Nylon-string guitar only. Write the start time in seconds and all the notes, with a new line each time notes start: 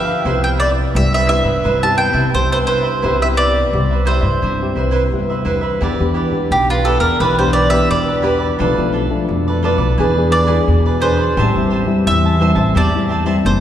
Already playing: D3 F3 B3 E4
0.26 C3 E4 G4
0.96 G2 B3 E4 G4
1.29 B3 E4 G4
1.65 C3
1.83 B3 E4 G4
2.35 G2 B3 E4 G4
3.05 C3 B3 E4 G4
3.23 B3 E4 G4
3.74 G2 B3 E4 G4
4.07 E4 G4
4.43 C3
4.62 E4 G4
5.12 G2 B3 E4 G4
5.82 E3 B3 D4 G4
6.00 B3 D4 G4
6.32 B3 D4 G4
6.52 B2
6.85 B3 D4 G4
7.21 E3
7.39 B3 D4 G4
7.70 B3 D4 G4
7.91 B2
8.23 B3 D4 G4
8.60 B2 F3 A3 D4
8.78 F3 A3 D4
9.10 F3 A3 D4
9.30 B2
9.63 F3 A3 D4
9.99 E3 B3 D4 G#4
10.18 B3 D4 G#4
10.49 B3 D4 G#4
10.69 B2
11.03 D4 G#4
11.38 A2 G3 C4 E4
11.56 G3 C4 E4
11.87 G3 C4 E4
12.07 E3
12.41 G3 C4 E4
12.77 A2
12.95 G3 C4 E4
13.25 G3 C4 E4
13.46 E3